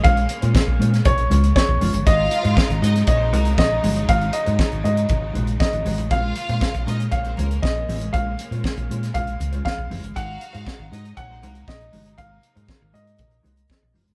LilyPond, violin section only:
\new Staff \with { instrumentName = "Violin section" } { \time 4/4 \key aes \mixolydian \tempo 4 = 119 r1 | <f' f''>4. <ees' ees''>8 <des' des''>16 <c' c''>16 <bes bes'>8 r4 | r1 | <f' f''>4. <ees' ees''>8 <des' des''>16 <c' c''>16 <bes bes'>8 r4 |
r1 | <ges' f''>4. <ees' ees''>8 <des' des''>16 <c' c''>16 <bes bes'>8 r4 | r1 | }